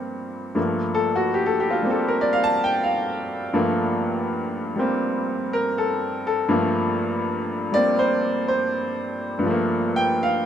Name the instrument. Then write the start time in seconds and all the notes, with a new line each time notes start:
upright piano
Already playing: G2 F3 G3 A3 A#3 C4
0.55 G2 F3 A3 A#3
0.94 A4
1.16 F#4
1.34 G4
1.46 A4
1.60 G4
1.70 F4
1.82 G3 A#3 C4
1.90 A4
2.08 A#4
2.21 D5
2.33 F5
2.44 A5
2.64 G5
2.84 F5
3.53 G2 F3 A3 A#3
4.76 G3 A#3 C4
5.53 A#4
5.78 A4
6.27 A4
6.49 G2 F3 A3 A#3
7.72 G3 A#3 C4 D5
7.99 C5
8.48 C5
9.39 G2 F3
9.46 A3
9.50 A#3
9.96 G5
10.23 F5